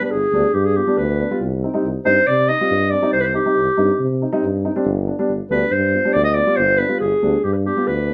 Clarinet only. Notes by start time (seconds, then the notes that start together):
0.05 B4
0.11 G#4
0.53 G4
0.64 G#4
0.76 G4
0.97 B4
2.05 C5
2.27 D5
2.48 D#5
2.90 D5
3.13 C5
3.20 B4 C5
3.35 G4
5.51 B4
5.72 C5
6.14 D5
6.24 D#5
6.34 D5
6.57 C5
6.78 B4
7.00 G#4
7.43 G4
7.53 B4
7.66 G4
7.87 B4